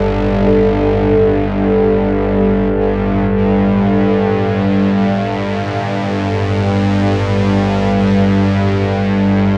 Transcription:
Already playing: G1 G2 A2 G3 D4 G4 A4
0.47 A4

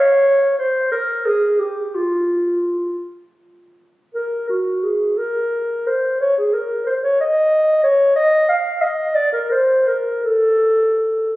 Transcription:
Already playing: C#5
0.58 C5
0.92 A#4
1.25 G#4
1.59 G4
1.95 F4
4.14 A#4
4.49 F#4
4.84 G#4
5.18 A#4
5.87 C5
6.21 C#5
6.38 G#4
6.54 A#4
6.86 C5
7.03 C#5
7.20 D#5
7.83 C#5
8.16 D#5
8.48 F5
8.82 D#5
9.15 D5
9.33 A#4
9.51 C5
9.87 A#4
10.25 A4

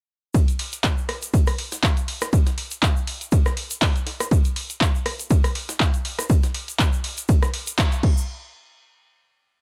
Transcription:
0.34 kick, ride, shaker
0.48 closed hi-hat, shaker
0.59 open hi-hat, ride
0.72 closed hi-hat, shaker
0.84 kick, snare, clap, ride, shaker
0.98 shaker
1.09 cross-stick, open hi-hat, ride
1.22 closed hi-hat, shaker
1.34 kick, ride, shaker
1.47 cross-stick, open hi-hat, ride, shaker
1.58 open hi-hat, ride
1.72 snare, closed hi-hat, shaker
1.83 kick, snare, clap, ride, shaker
1.97 closed hi-hat, shaker
2.08 open hi-hat, ride
2.21 cross-stick, snare, closed hi-hat, shaker
2.33 kick, ride, shaker
2.46 snare, closed hi-hat, shaker
2.58 open hi-hat, ride
2.71 closed hi-hat, shaker
2.82 kick, snare, clap, ride, shaker
2.97 shaker
3.07 open hi-hat, ride
3.21 closed hi-hat, shaker
3.32 kick, ride, shaker
3.46 cross-stick, snare, shaker
3.57 open hi-hat, ride
3.71 closed hi-hat, shaker
3.82 kick, snare, clap, open hi-hat, ride, shaker
3.96 closed hi-hat, shaker
4.07 snare, open hi-hat, ride
4.20 cross-stick, snare, closed hi-hat, shaker
4.31 kick, ride, shaker
4.45 closed hi-hat, shaker
4.56 open hi-hat, ride
4.70 closed hi-hat, shaker
4.81 kick, snare, clap, ride, shaker
4.95 shaker
5.06 cross-stick, open hi-hat, ride
5.20 closed hi-hat, shaker
5.31 kick, ride, shaker
5.44 cross-stick, open hi-hat, ride, shaker
5.55 open hi-hat, ride
5.69 snare, closed hi-hat, shaker
5.80 kick, snare, clap, ride, shaker
5.94 closed hi-hat, shaker
6.05 open hi-hat, ride
6.19 cross-stick, snare, closed hi-hat, shaker
6.30 kick, ride, shaker
6.43 snare, closed hi-hat, shaker
6.54 open hi-hat, ride
6.68 closed hi-hat, shaker
6.79 kick, snare, clap, ride, shaker
6.93 shaker
7.04 open hi-hat, ride
7.17 closed hi-hat, shaker
7.29 kick, ride, shaker
7.43 cross-stick, snare, closed hi-hat, shaker
7.54 open hi-hat, ride
7.67 closed hi-hat, shaker
7.78 kick, snare, clap, open hi-hat, ride, shaker
7.92 closed hi-hat, shaker
8.03 kick, crash
8.17 shaker

